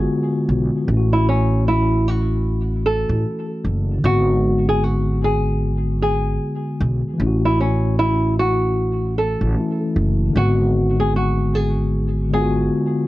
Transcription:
Already playing: D3 G#3 B3 F4 F#4 G#4
0.49 B1
0.84 A1 E3
0.89 A3
0.93 C#4
0.97 F#4
1.13 E4
1.29 C#4
1.68 E4
2.08 F#4
2.86 A4
3.09 A1
3.64 F#1
3.98 D3
4.03 G#1 G#3 F#4
4.07 B3
4.11 F#4
4.69 G#4
4.84 F#4
5.24 G#4
6.02 G#4
6.80 B1
7.13 E3
7.18 A1 A3
7.22 C#4
7.26 F#4
7.45 E4
7.61 C#4
7.99 E4
8.39 F#4
9.18 A4
9.41 A1
9.53 E3 A3
9.58 C#4 E4
9.96 F#1
10.29 D3
10.33 G#1 G#3 F#4
10.38 B3
10.42 F#4
11.00 G#4
11.16 F#4
11.55 G#4
12.29 D3 G#3
12.33 B3 F4 G#4
12.42 F#4

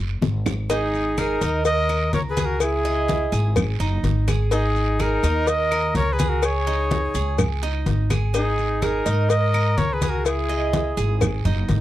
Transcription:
Already playing: F#1
0.21 G#1, high bongo, low bongo, high conga, short guiro, maracas
0.46 high bongo, low conga, short guiro, claves, maracas
0.70 D#4 G#4, cowbell, high conga, long guiro, maracas
0.94 high conga, maracas
1.17 D#4 G#4 A#4, cowbell, high conga, short guiro, claves, maracas
1.41 D#2 D#5, cowbell, high conga, short guiro, maracas
1.64 A#4 D#5, cowbell, high conga, long guiro, maracas
1.89 A#4, high conga, claves, maracas
2.13 C#2 A#4 C#5, cowbell, high conga, short guiro, maracas
2.29 G#4 B4
2.37 G#4, cowbell, high conga, short guiro, maracas
2.45 F#4 A#4
2.60 E4 G#4, cowbell, high conga, long guiro, claves, maracas
2.85 D#5, high conga, maracas
3.08 cowbell, high conga, short guiro, maracas
3.32 G#1 G#4, high conga, short guiro, maracas
3.56 cowbell, high conga, low conga, long guiro, claves, maracas
3.80 F#1 D#4, high conga, maracas
4.03 G#1, cowbell, high conga, short guiro, maracas
4.28 G#4, cowbell, high conga, short guiro, claves, maracas
4.51 D#4 G#4, cowbell, high conga, long guiro, maracas
4.76 high conga, maracas
4.99 D#4 G#4 A#4, cowbell, high conga, short guiro, claves, maracas
5.23 D#2 D#5, cowbell, high conga, short guiro, maracas
5.47 A#4 D#5, cowbell, high conga, long guiro, maracas
5.72 A#4, high conga, claves, maracas
5.95 C#2 A#4 C#5, cowbell, high conga, short guiro, maracas
6.13 G#4 B4
6.19 G#4, cowbell, high conga, short guiro, maracas
6.29 F#4 A#4
6.43 G#4 C#5, cowbell, high conga, long guiro, claves, maracas
6.67 D#4, high conga, maracas
6.91 cowbell, high conga, short guiro, maracas
7.14 C#2 G#4, high conga, short guiro, maracas
7.38 cowbell, high conga, low conga, long guiro, claves, maracas
7.63 D#4, high conga, maracas
7.86 G#1, cowbell, high conga, short guiro, maracas
8.10 G#4, cowbell, high conga, short guiro, claves, maracas
8.34 D#4 G#4, cowbell, high conga, long guiro, maracas
8.58 high conga, maracas
8.82 D#4 G#4 A#4, cowbell, high conga, short guiro, claves, maracas
9.06 G#2 D#5, cowbell, high conga, short guiro, maracas
9.29 A#4 D#5, cowbell, high conga, long guiro, maracas
9.54 A#4, high conga, claves, maracas
9.77 C#2 A#4 C#5, cowbell, high conga, short guiro, maracas
9.93 G#4 B4
10.02 G#4, cowbell, high conga, short guiro, maracas
10.09 F#4 A#4
10.25 E4 G#4, cowbell, high conga, long guiro, claves, maracas
10.49 D#5, high conga, maracas
10.73 cowbell, high conga, short guiro, maracas
10.97 G#1 G#4, high conga, short guiro, maracas
11.21 cowbell, high conga, low conga, long guiro, claves, maracas
11.45 F#1 D#4, high conga, low conga, maracas
11.69 G#1, cowbell, high conga, short guiro, maracas

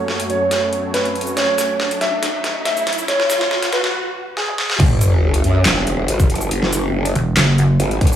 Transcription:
Already playing: F#2 F#3 A3 C#4 C#5, riser
0.08 snare
0.20 closed hi-hat
0.30 C#5, closed hi-hat
0.51 snare, closed hi-hat
0.73 closed hi-hat
0.94 B4, snare, closed hi-hat
1.05 closed hi-hat
1.15 closed hi-hat
1.21 closed hi-hat
1.27 shaker
1.37 C#5, snare, closed hi-hat
1.58 snare, closed hi-hat, shaker
1.80 snare
1.91 closed hi-hat
2.01 E5, snare, closed hi-hat
2.23 snare, closed hi-hat
2.44 snare, closed hi-hat
2.65 E5, snare, closed hi-hat
2.77 closed hi-hat, shaker
2.87 snare, closed hi-hat
2.93 closed hi-hat
2.98 shaker
3.08 C#5, snare, closed hi-hat
3.20 snare
3.30 snare, closed hi-hat, shaker
3.41 snare
3.51 snare
3.63 snare, closed hi-hat
3.73 B4, snare, closed hi-hat
3.84 snare
4.37 G#4, snare
4.48 high tom
4.58 snare
4.70 snare
4.80 F#1, kick, closed hi-hat, crash, sub drop
5.01 closed hi-hat, shaker
5.34 closed hi-hat
5.44 F#2, closed hi-hat
5.65 E1, snare, clap, closed hi-hat
5.87 closed hi-hat
6.08 G#1, closed hi-hat
6.20 kick, closed hi-hat, shaker
6.30 F#1, closed hi-hat
6.35 closed hi-hat
6.41 shaker
6.51 F#1, closed hi-hat
6.63 snare
6.73 closed hi-hat, shaker
7.05 closed hi-hat
7.15 E1, closed hi-hat
7.37 F#1, snare, clap, closed hi-hat
7.58 closed hi-hat
7.80 G#1, closed hi-hat
7.91 closed hi-hat
8.01 F#1, kick, closed hi-hat
8.07 closed hi-hat
8.13 shaker

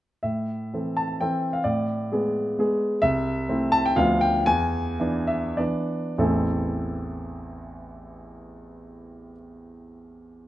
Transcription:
0.23 A2 E5
0.73 E3 C4 A4
0.97 A5
1.21 E3 C4 A4 G5
1.53 F5
1.64 A2 D5
2.12 G#3 B3 G#4
2.59 G#3 B3 G#4
3.02 C2 E5
3.49 A3 C4 E4
3.72 A5
3.86 G5
3.96 D2 F3 B3 D4 F5
4.21 G5
4.46 E2 G#5
5.00 E3 B3 D4
5.27 E5
5.57 E3 B3 D4 D5
6.18 A1 E2 E3 A3 C4 E4 A4

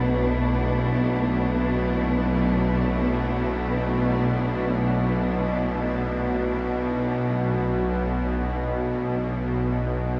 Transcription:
Already playing: B1 B2 A3 B3 D4 E4 B4

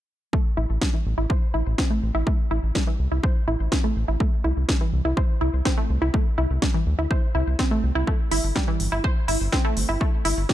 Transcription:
0.33 A3, kick
0.57 A1 E4
0.70 A1
0.81 G3, kick, snare
0.94 E3
1.06 A1
1.18 A1 E4
1.30 C5, kick
1.54 A1 E4
1.66 A1
1.78 C4, kick, snare
1.90 A3
2.03 A1
2.15 A1 E4
2.27 A3, kick
2.51 A1 E4
2.63 A1
2.75 G3, kick, snare
2.87 E3
2.99 C2
3.12 C2 E4
3.23 C5, kick
3.48 A1 E4
3.60 A1
3.72 C4, kick, snare
3.84 A3
3.96 A1
4.08 A1 E4
4.20 A3, kick
4.44 C2 E4
4.57 C2
4.69 G3, kick, snare
4.81 E3
4.93 C2
5.05 C2 E4
5.17 C5, kick
5.41 C2 E4
5.53 C2
5.65 C4, kick, snare
5.78 A3
5.90 C2
6.02 C2 E4
6.14 A3, kick
6.38 C2 E4
6.50 C2
6.62 G3, kick, snare
6.74 E3
6.86 D2
6.99 D2 E4
7.11 C5, kick
7.35 C2 E4
7.47 C2
7.59 C4, kick, snare
7.71 A3
7.83 C2
7.95 C2 E4
8.07 A3, kick
8.31 G1 E4, open hi-hat
8.44 G1
8.56 G3, kick, snare
8.68 E3
8.80 G1, open hi-hat
8.92 G1 E4
9.04 C5, kick
9.28 G1 E4, open hi-hat
9.41 G1
9.52 C4, kick, snare
9.65 A3
9.77 G1, open hi-hat
9.89 G1 E4
10.01 A3, kick
10.25 G1 E4, open hi-hat
10.37 G1
10.49 G3, kick, snare

